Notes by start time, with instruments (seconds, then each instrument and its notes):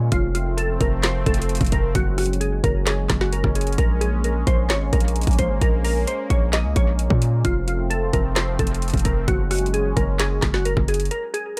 Already playing: 808-style bass A#2
0.12 808-style bass F1, analog synth pad F3 A3 C4, synth pluck F4, kick, closed hi-hat
0.35 synth pluck F4, closed hi-hat
0.57 synth pluck A4, closed hi-hat
0.81 808-style bass F1, synth pluck A#4, kick, closed hi-hat
1.03 synth pluck C5, snare, clap, closed hi-hat
1.26 808-style bass F1, synth pluck A4, kick, closed hi-hat
1.34 closed hi-hat
1.42 closed hi-hat
1.49 closed hi-hat
1.55 closed hi-hat
1.57 808-style bass F1, kick, closed hi-hat
1.61 closed hi-hat
1.65 closed hi-hat
1.66 closed hi-hat
1.72 synth pluck A#4, kick, closed hi-hat
1.95 808-style bass F#1, analog synth pad F#3 G#3 C#4, synth pluck F#4, kick, closed hi-hat
2.18 synth pluck F#4, cross-stick, closed hi-hat, open hi-hat
2.26 closed hi-hat
2.33 closed hi-hat
2.41 synth pluck G#4, closed hi-hat
2.64 808-style bass F#1, synth pluck A#4, kick, closed hi-hat
2.87 synth pluck G#4, snare, clap, closed hi-hat
3.09 808-style bass F#1, kick, snare, clap, closed hi-hat
3.21 synth pluck F#4, snare
3.33 synth pluck A#4, closed hi-hat
3.44 808-style bass F#1, kick, cross-stick
3.55 synth pluck G#4, closed hi-hat
3.61 closed hi-hat
3.67 closed hi-hat
3.73 closed hi-hat
3.78 808-style bass A#1, analog synth pad A#3, synth pluck A#4, kick, closed hi-hat
4.01 synth pluck G#4, closed hi-hat
4.24 synth pluck A#4, closed hi-hat
4.47 808-style bass A#1, synth pluck C5, kick, closed hi-hat
4.70 808-style bass G#1, synth pluck C#5, snare, clap, closed hi-hat
4.93 808-style bass A#1, synth pluck A#4, kick, closed hi-hat
5.00 closed hi-hat
5.08 closed hi-hat
5.16 closed hi-hat
5.21 closed hi-hat
5.23 closed hi-hat
5.27 808-style bass A#1, kick, closed hi-hat
5.31 closed hi-hat
5.33 closed hi-hat
5.39 synth pluck C5, kick, closed hi-hat
5.50 808-style bass G#1
5.61 808-style bass A#1, synth pluck A#4, kick, closed hi-hat
5.84 synth pluck A#4, open hi-hat
6.07 synth pluck C5, closed hi-hat
6.30 808-style bass A#1, synth pluck C#5, kick, closed hi-hat
6.53 synth pluck D#5, snare, clap, closed hi-hat
6.65 808-style bass C#2
6.76 808-style bass A#1, synth pluck C#5, kick, closed hi-hat
6.99 closed hi-hat
7.10 808-style bass A#2, kick
7.22 closed hi-hat
7.45 808-style bass F1, analog synth pad F3 A3 C4, synth pluck F4, kick, closed hi-hat
7.68 synth pluck F4, closed hi-hat
7.90 synth pluck A4, closed hi-hat
8.13 808-style bass F1, synth pluck A#4, kick, closed hi-hat
8.36 synth pluck C5, snare, clap, closed hi-hat
8.59 808-style bass F1, synth pluck A4, kick, closed hi-hat
8.67 closed hi-hat
8.74 closed hi-hat
8.82 closed hi-hat
8.88 closed hi-hat
8.90 closed hi-hat
8.94 808-style bass F1, kick, closed hi-hat
8.97 closed hi-hat
8.99 closed hi-hat
9.05 synth pluck A#4, kick, closed hi-hat
9.28 808-style bass F#1, analog synth pad F#3 G#3 C#4, synth pluck F#4, kick, closed hi-hat
9.51 synth pluck F#4, cross-stick, closed hi-hat, open hi-hat
9.58 closed hi-hat
9.66 closed hi-hat
9.74 synth pluck G#4, closed hi-hat
9.97 808-style bass F#1, synth pluck A#4, kick, closed hi-hat
10.19 synth pluck G#4, snare, clap, closed hi-hat
10.42 808-style bass F#1, kick, snare, clap, closed hi-hat
10.54 synth pluck F#4, snare
10.65 synth pluck A#4, closed hi-hat
10.77 808-style bass F#1, kick, cross-stick
10.88 synth pluck G#4, closed hi-hat
10.94 closed hi-hat
11.00 closed hi-hat
11.05 closed hi-hat
11.11 synth pluck A#4, closed hi-hat
11.34 synth pluck G#4, closed hi-hat